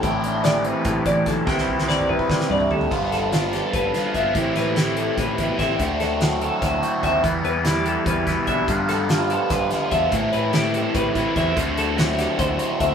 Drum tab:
CC |--------------|--------------|x-------------|--------------|
HH |x-x-x-x-x-x-x-|--------------|--x-x-x-x-x-x-|x-x-x-x-x-x-x-|
SD |----o-------o-|oo-oo---oo----|--o-o-o---o---|--o-o-------o-|
T2 |--------------|-----oo-------|--------------|--------------|
FT |--------------|----------oooo|--------------|--------------|
BD |o-------o-o-o-|o-o----oo-----|o-------o---o-|o-------o-o-o-|

CC |--------------|--------------|--------------|--------------|
HH |x-x-x-x-x-x-x-|x-x-x-x-x-x-x-|x-x-x-x-x-x-x-|x-x-x-x-x-x-x-|
SD |--o-o---o-----|----o-----o---|--o-o---o-o---|----o---------|
T2 |--------------|--------------|--------------|--------------|
FT |--------------|--------------|--------------|--------------|
BD |o-------o---o-|o-------o-o-o-|o-------o---o-|o-------o-o-o-|

CC |--------------|
HH |x-x-x-x-x-x-x-|
SD |----o-o-------|
T2 |--------------|
FT |--------------|
BD |o-------o---o-|